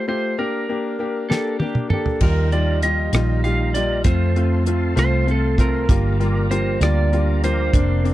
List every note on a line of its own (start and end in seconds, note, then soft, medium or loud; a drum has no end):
0.08 0.33 A3 medium
0.08 0.33 F4 medium
0.08 0.33 G4 medium
0.08 0.39 C5 medium
0.38 0.64 A#3 medium
0.38 0.64 D4 medium
0.38 0.64 G4 medium
0.38 1.57 A#4 medium
0.69 0.94 A#3 medium
0.69 0.95 D4 medium
0.69 0.95 G4 medium
0.99 1.25 A#3 medium
0.99 1.25 D4 medium
0.99 1.25 G4 medium
1.29 1.55 A#3 medium
1.29 1.56 D4 medium
1.29 1.56 G4 medium
1.29 1.59 A4 medium
1.29 snare soft
1.60 1.86 A#3 medium
1.60 1.87 D4 medium
1.60 1.90 G4 medium
1.60 1.87 G4 medium
1.60 high tom medium
1.75 mid tom medium
1.90 2.17 A#3 medium
1.90 2.17 D4 medium
1.90 2.17 G4 medium
1.90 2.22 A4 medium
1.90 mid tom medium
2.06 floor tom medium
2.21 3.09 D#2 medium
2.21 2.82 D#3 medium
2.21 2.81 F3 medium
2.21 2.47 G3 medium
2.21 2.81 A#3 medium
2.21 2.47 D#4 medium
2.21 4.04 D#4 medium
2.21 2.83 D#4 medium
2.21 2.47 F4 medium
2.21 4.04 G4 medium
2.21 2.83 G4 medium
2.21 2.54 A#4 medium
2.21 4.04 F5 soft
2.21 4.04 A#5 medium
2.21 kick loud
2.21 crash medium
2.52 2.78 G3 medium
2.52 2.78 D#4 medium
2.52 2.78 F4 medium
2.52 2.83 D5 medium
2.52 closed hi-hat soft
2.82 3.13 F3 medium
2.82 3.09 G3 medium
2.82 3.12 A#3 medium
2.82 3.11 D#4 medium
2.82 3.09 D#4 medium
2.82 3.09 F4 medium
2.82 3.11 G4 medium
2.82 3.40 D#5 medium
2.82 closed hi-hat medium
3.12 4.01 A#1 medium
3.12 3.75 D#3 soft
3.12 3.76 F3 soft
3.12 3.39 G3 medium
3.12 3.75 A#3 soft
3.12 3.73 D#4 medium
3.12 3.39 D#4 medium
3.12 3.40 F4 medium
3.12 3.72 G4 medium
3.12 cross-stick medium
3.12 closed hi-hat medium
3.44 3.70 G3 medium
3.44 3.70 D#4 medium
3.44 3.70 F4 medium
3.44 3.76 F5 medium
3.44 closed hi-hat soft
3.73 4.01 G3 medium
3.73 4.04 A#3 soft
3.73 4.04 D#4 soft
3.73 4.01 D#4 medium
3.73 4.01 F4 medium
3.73 4.05 G4 soft
3.73 4.04 D5 medium
3.73 closed hi-hat medium
4.03 4.93 F2 medium
4.03 4.65 F3 medium
4.03 4.31 A3 medium
4.03 4.64 C4 medium
4.03 4.31 C4 medium
4.03 4.66 F4 medium
4.03 4.31 F4 medium
4.03 4.67 A4 medium
4.03 4.62 C5 medium
4.03 5.87 C5 medium
4.03 8.14 F5 medium
4.03 5.87 A5 medium
4.03 5.87 C6 medium
4.03 kick loud
4.03 closed hi-hat medium
4.36 4.62 A3 medium
4.36 4.62 C4 medium
4.36 4.62 F4 medium
4.36 closed hi-hat soft
4.65 4.96 F3 medium
4.65 4.93 A3 medium
4.65 4.95 C4 medium
4.65 4.93 C4 medium
4.65 4.95 F4 medium
4.65 4.93 F4 medium
4.65 4.94 A4 medium
4.65 closed hi-hat medium
4.95 5.85 C2 medium
4.95 5.88 F3 soft
4.95 5.23 A3 medium
4.95 5.23 C4 medium
4.95 5.58 C4 medium
4.95 5.58 F4 medium
4.95 5.23 F4 medium
4.95 5.58 A4 medium
4.95 cross-stick medium
4.95 closed hi-hat medium
4.99 5.30 C5 medium
5.27 5.53 A3 medium
5.27 5.54 C4 medium
5.27 5.54 F4 medium
5.27 closed hi-hat soft
5.31 5.60 A4 medium
5.58 5.84 A3 medium
5.58 5.84 C4 medium
5.58 5.89 C4 soft
5.58 5.89 F4 soft
5.58 5.85 F4 medium
5.58 6.54 A#4 medium
5.58 kick medium
5.58 closed hi-hat medium
5.87 6.77 G1 medium
5.87 6.50 G2 medium
5.87 6.81 D3 medium
5.87 6.48 F3 medium
5.87 6.15 G3 medium
5.87 6.50 A#3 medium
5.87 6.15 A#3 medium
5.87 6.50 D4 medium
5.87 6.15 F4 medium
5.87 7.71 G4 medium
5.87 6.51 A#4 medium
5.87 8.14 D5 medium
5.87 7.71 A#5 medium
5.87 kick loud
5.87 closed hi-hat medium
6.20 6.46 G3 medium
6.20 6.46 A#3 medium
6.20 6.46 F4 medium
6.20 closed hi-hat soft
6.49 6.80 F3 medium
6.49 6.77 G3 medium
6.49 6.79 A#3 medium
6.49 6.77 A#3 medium
6.49 6.79 D4 medium
6.49 6.77 F4 medium
6.49 6.78 A#4 medium
6.49 6.82 C5 medium
6.49 closed hi-hat medium
6.79 7.69 D2 medium
6.79 7.43 G2 soft
6.79 7.78 D3 soft
6.79 7.45 F3 medium
6.79 7.07 G3 medium
6.79 7.44 A#3 medium
6.79 7.07 A#3 medium
6.79 7.43 D4 medium
6.79 7.08 F4 medium
6.79 7.42 A#4 medium
6.79 7.44 D5 medium
6.79 cross-stick medium
6.79 closed hi-hat medium
7.13 7.38 G3 medium
7.13 7.39 A#3 medium
7.13 7.38 F4 medium
7.13 closed hi-hat soft
7.42 7.73 F3 soft
7.42 7.69 G3 medium
7.42 7.69 A#3 medium
7.42 7.74 A#3 soft
7.42 7.74 D4 soft
7.42 7.69 F4 medium
7.42 7.73 A#4 soft
7.42 8.14 C5 medium
7.42 closed hi-hat medium
7.73 8.14 F1 medium
7.73 8.14 F3 medium
7.73 7.99 A#3 medium
7.73 8.14 A#3 medium
7.73 7.99 C4 medium
7.73 8.14 C4 medium
7.73 7.99 D4 medium
7.73 8.14 D4 medium
7.73 8.14 A#4 medium
7.73 8.14 C6 medium
7.73 kick loud
7.73 closed hi-hat medium
8.04 8.14 A#3 medium
8.04 8.14 C4 medium
8.04 8.14 D4 medium
8.04 closed hi-hat soft